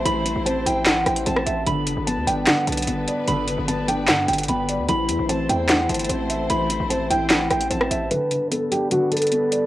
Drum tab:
HH |x---x---x---x---x---x-x-x---x---|x---x---x---x---x---xxxxx---x---|x---x---x---x---x---xxxxx---x---|x---x---x---x---x---xxxxx---x---|
CP |----------------x---------------|----------------x---------------|----------------x---------------|----------------x---------------|
SD |----------------o---r-----r-----|----------------o---------------|----------------o---------------|----------------o---------------|

HH |x---x---x---x---x---x-x-x---x---|x---x---x---x---x---xxxxx---x---|
CP |----------------x---------------|--------------------------------|
SD |----------------o---r-----r-----|--------------------------------|